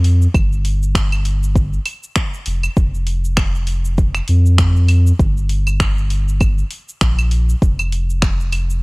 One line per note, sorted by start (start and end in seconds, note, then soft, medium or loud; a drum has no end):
0.00 0.27 F2 medium
0.04 open hi-hat medium
0.22 shaker medium
0.34 1.79 G1 loud
0.34 kick loud
0.34 claves medium
0.34 shaker medium
0.53 shaker soft
0.65 open hi-hat loud
0.83 shaker medium
0.95 finger snap loud
0.95 kick loud
0.95 shaker medium
1.12 claves medium
1.12 shaker soft
1.25 open hi-hat medium
1.43 shaker medium
1.56 kick loud
1.56 shaker medium
1.73 shaker soft
1.86 open hi-hat medium
1.86 claves medium
2.03 shaker medium
2.16 finger snap loud
2.16 kick medium
2.16 shaker medium
2.34 shaker soft
2.46 2.68 F1 medium
2.46 open hi-hat medium
2.63 claves medium
2.63 shaker medium
2.77 4.21 F1 loud
2.77 kick loud
2.77 shaker medium
2.94 shaker soft
3.07 open hi-hat medium
3.25 shaker medium
3.37 finger snap loud
3.37 kick loud
3.37 claves medium
3.37 shaker medium
3.55 shaker soft
3.67 open hi-hat medium
3.85 shaker medium
3.98 kick loud
3.98 shaker medium
4.15 finger snap soft
4.15 claves medium
4.15 shaker soft
4.28 5.12 F2 loud
4.28 open hi-hat medium
4.46 shaker medium
4.58 finger snap loud
4.58 kick loud
4.58 shaker medium
4.76 shaker soft
4.88 open hi-hat medium
4.88 claves medium
5.07 shaker medium
5.19 6.64 G1 loud
5.19 kick loud
5.19 shaker medium
5.37 shaker soft
5.49 open hi-hat medium
5.67 claves medium
5.67 shaker medium
5.80 finger snap loud
5.80 kick loud
5.80 shaker medium
5.98 shaker soft
6.10 open hi-hat medium
6.28 shaker medium
6.40 kick loud
6.40 claves medium
6.40 shaker medium
6.58 shaker soft
6.71 open hi-hat medium
6.89 shaker medium
7.01 7.55 A#1 loud
7.01 finger snap loud
7.01 kick medium
7.01 shaker medium
7.19 claves medium
7.19 shaker soft
7.31 open hi-hat medium
7.49 shaker medium
7.62 8.83 F1 loud
7.62 kick loud
7.62 shaker medium
7.79 claves medium
7.79 shaker soft
7.92 open hi-hat medium
8.10 shaker medium
8.22 finger snap loud
8.22 kick loud
8.22 shaker medium
8.40 shaker soft
8.52 open hi-hat medium
8.52 claves medium
8.70 shaker medium